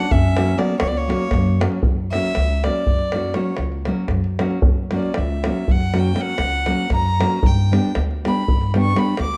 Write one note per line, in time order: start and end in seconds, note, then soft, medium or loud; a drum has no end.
0.00 0.14 D4 medium
0.00 0.13 F#5 loud
0.00 davul high soft
0.11 0.53 F#2 medium
0.11 0.60 C#4 loud
0.11 0.60 E5 medium
0.11 davul low medium
0.37 0.53 F#3 medium
0.37 0.54 A#3 medium
0.37 0.54 C#4 medium
0.37 0.54 F#4 medium
0.37 davul high medium
0.49 davul high soft
0.57 0.74 F#3 medium
0.57 0.75 A#3 medium
0.57 0.79 B3 medium
0.57 0.75 C#4 medium
0.57 0.75 F#4 medium
0.57 0.79 D5 medium
0.57 davul high medium
0.69 davul high soft
0.80 1.12 C#2 medium
0.80 0.90 A#3 medium
0.80 0.90 C#5 medium
0.80 davul high medium
0.88 0.99 B3 medium
0.88 0.99 D5 medium
0.94 1.62 A#3 medium
0.94 1.62 C#5 medium
0.94 davul high soft
1.08 1.26 F#3 medium
1.08 1.26 A#3 medium
1.08 1.27 C#4 medium
1.08 1.27 F#4 medium
1.08 davul high medium
1.21 davul high soft
1.31 1.64 F#2 loud
1.31 davul high medium
1.31 davul low medium
1.46 davul high soft
1.60 1.78 F#3 medium
1.60 1.78 A#3 medium
1.60 1.79 C#4 medium
1.60 1.79 F#4 medium
1.60 davul high medium
1.72 davul high soft
1.83 2.15 F#2 medium
1.83 davul low medium
2.12 2.31 F#3 medium
2.12 2.32 A#3 medium
2.12 2.32 C#4 medium
2.12 2.32 F#4 medium
2.12 2.65 E5 loud
2.12 davul high medium
2.24 davul high soft
2.35 2.67 C#2 medium
2.35 davul high medium
2.50 davul high soft
2.64 2.83 F#3 soft
2.64 2.83 A#3 soft
2.64 2.84 C#4 soft
2.64 2.84 F#4 medium
2.64 3.36 D5 medium
2.64 davul high medium
2.87 3.31 F#2 medium
2.87 davul low medium
2.99 davul high soft
3.12 3.31 F#3 soft
3.12 3.32 A#3 medium
3.12 3.32 C#4 soft
3.12 3.32 F#4 medium
3.12 davul high medium
3.24 davul high soft
3.34 3.53 F#3 medium
3.34 3.53 A#3 medium
3.34 3.53 C#4 medium
3.34 3.54 F#4 medium
3.34 3.57 C#5 medium
3.34 davul high medium
3.57 3.90 C#2 medium
3.57 davul high medium
3.72 davul high soft
3.85 4.05 F#3 medium
3.85 4.06 A#3 medium
3.85 4.06 C#4 medium
3.85 4.06 F#4 medium
3.85 davul high medium
4.08 4.42 F#2 medium
4.08 davul high medium
4.08 davul low medium
4.24 davul high soft
4.39 4.58 F#3 medium
4.39 4.58 A#3 medium
4.39 4.58 C#4 medium
4.39 4.59 F#4 medium
4.39 davul high medium
4.51 davul high soft
4.62 4.95 F#2 medium
4.62 davul low loud
4.91 5.10 F#3 medium
4.91 5.11 A#3 medium
4.91 5.11 C#4 medium
4.91 5.11 F#4 medium
4.91 davul high medium
4.95 5.20 D5 medium
5.02 davul high soft
5.14 5.48 C#2 medium
5.14 davul high medium
5.18 5.73 E5 medium
5.31 davul high soft
5.44 5.63 F#3 medium
5.44 5.63 A#3 soft
5.44 5.63 C#4 medium
5.44 5.64 F#4 medium
5.44 davul high medium
5.68 6.11 F#2 medium
5.68 6.00 F#5 medium
5.68 davul low medium
5.80 davul high soft
5.93 6.11 F#3 medium
5.93 6.12 A#3 soft
5.93 6.12 C#4 medium
5.93 6.12 F#4 medium
5.93 davul high medium
5.99 6.22 G5 medium
6.06 davul high soft
6.14 6.33 F#3 medium
6.14 6.33 A#3 medium
6.14 6.33 C#4 medium
6.14 6.34 F#4 medium
6.14 davul high medium
6.20 6.93 F#5 loud
6.38 6.70 C#2 medium
6.38 davul high medium
6.52 davul high soft
6.66 6.85 F#3 medium
6.66 6.86 A#3 medium
6.66 6.86 C#4 medium
6.66 6.86 F#4 medium
6.66 davul high medium
6.90 7.22 F#2 medium
6.90 davul high medium
6.90 davul low medium
6.95 7.48 A#5 loud
7.06 davul high soft
7.20 7.38 F#3 medium
7.20 7.38 A#3 medium
7.20 7.39 C#4 medium
7.20 7.39 F#4 medium
7.20 davul high medium
7.31 davul high soft
7.43 7.75 G2 medium
7.43 davul low medium
7.47 7.98 G5 medium
7.71 7.90 G3 medium
7.71 7.91 B3 medium
7.71 7.91 D4 medium
7.71 7.91 G4 medium
7.71 davul high medium
7.85 davul high soft
7.95 8.27 D2 medium
7.95 davul high medium
8.11 davul high soft
8.25 8.43 G3 medium
8.25 8.43 B3 medium
8.25 8.44 D4 medium
8.25 8.44 G4 medium
8.25 8.73 B5 medium
8.25 davul high medium
8.48 8.91 G2 medium
8.48 davul low medium
8.61 davul high soft
8.74 8.92 G3 medium
8.74 8.92 B3 medium
8.74 8.92 D4 medium
8.74 8.93 G4 medium
8.74 davul high medium
8.79 9.00 C#6 medium
8.85 davul high soft
8.95 9.13 G3 medium
8.95 9.13 B3 medium
8.95 9.14 D4 medium
8.95 9.14 G4 medium
8.95 9.20 B5 medium
8.95 davul high medium
9.17 9.37 D2 medium
9.17 davul high medium
9.22 9.37 D6 medium
9.34 davul high soft